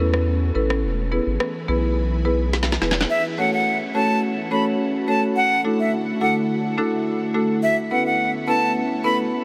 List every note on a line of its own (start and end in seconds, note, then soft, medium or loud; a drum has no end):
0.00 0.51 E2 medium
0.00 0.81 A3 medium
0.00 0.81 B3 medium
0.00 0.11 C#4 medium
0.00 0.81 C#4 medium
0.00 0.11 E4 medium
0.00 0.11 A4 medium
0.00 0.11 B4 medium
0.14 cross-stick medium
0.55 0.85 A1 medium
0.55 0.67 C#4 medium
0.55 0.67 E4 medium
0.55 0.67 A4 medium
0.55 0.67 B4 medium
0.70 cross-stick medium
0.83 1.20 E1 loud
0.83 3.08 E3 medium
0.83 3.08 E4 medium
0.83 3.08 G#4 medium
0.83 3.08 B4 medium
1.12 1.24 B3 medium
1.12 1.24 E4 medium
1.12 1.24 G#4 medium
1.12 1.24 B4 medium
1.27 1.38 G#1 loud
1.40 cross-stick loud
1.68 2.78 B1 loud
1.68 1.80 B3 medium
1.68 1.80 E4 medium
1.68 1.80 G#4 medium
1.68 1.80 B4 medium
2.25 2.37 B3 medium
2.25 2.37 E4 medium
2.25 2.37 G#4 medium
2.25 2.37 B4 loud
2.53 snare medium
2.63 snare medium
2.72 snare medium
2.81 3.05 E1 loud
2.81 2.94 B3 medium
2.81 2.94 E4 medium
2.81 2.94 G#4 medium
2.81 2.94 B4 medium
2.81 snare medium
2.91 snare medium
3.01 snare medium
3.10 7.59 A3 medium
3.10 5.34 C#4 medium
3.10 7.59 F#4 medium
3.10 3.23 E5 loud
3.38 3.50 A3 medium
3.38 3.50 C#4 medium
3.38 3.50 F#4 medium
3.38 3.50 A4 medium
3.38 3.50 C#5 medium
3.38 3.51 F#5 medium
3.53 3.78 F#5 medium
3.95 4.07 A3 medium
3.95 4.07 C#4 medium
3.95 4.07 F#4 medium
3.95 4.07 A4 medium
3.95 4.07 C#5 medium
3.95 4.19 A5 medium
4.51 4.63 A3 medium
4.51 4.63 C#4 medium
4.51 4.63 F#4 medium
4.51 4.63 A4 medium
4.51 4.64 C#5 medium
4.51 4.64 B5 medium
5.08 5.20 A3 medium
5.08 5.20 C#4 medium
5.08 5.20 F#4 medium
5.08 5.20 A4 medium
5.08 5.20 C#5 medium
5.08 5.21 A5 medium
5.36 7.61 D3 medium
5.36 7.61 E4 medium
5.36 5.61 F#5 loud
5.64 5.77 A3 medium
5.64 5.77 D4 medium
5.64 5.77 E4 medium
5.64 5.77 F#4 medium
5.64 5.77 A4 medium
5.80 5.91 E5 medium
6.21 6.33 A3 medium
6.21 6.33 D4 medium
6.21 6.33 E4 medium
6.21 6.33 F#4 medium
6.21 6.33 A4 medium
6.21 6.34 F#5 medium
6.78 6.90 A3 medium
6.78 6.90 D4 medium
6.78 6.90 E4 medium
6.78 6.90 F#4 medium
6.78 6.90 A4 loud
7.34 7.46 A3 medium
7.34 7.46 D4 medium
7.34 7.47 E4 medium
7.34 7.47 F#4 medium
7.34 7.47 A4 medium
7.63 9.44 A3 medium
7.63 9.44 B3 medium
7.63 9.44 C#4 medium
7.63 7.76 E5 loud
7.91 8.03 B3 medium
7.91 8.03 C#4 medium
7.91 8.03 E4 medium
7.91 8.03 A4 medium
7.91 8.03 B4 medium
7.91 8.04 F#5 medium
8.06 8.31 F#5 medium
8.48 8.60 B3 medium
8.48 8.60 C#4 medium
8.48 8.60 E4 medium
8.48 8.60 A4 medium
8.48 8.60 B4 medium
8.48 8.72 A5 loud
9.04 9.16 B3 medium
9.04 9.16 C#4 medium
9.04 9.16 E4 medium
9.04 9.16 A4 medium
9.04 9.16 B4 medium
9.04 9.17 B5 medium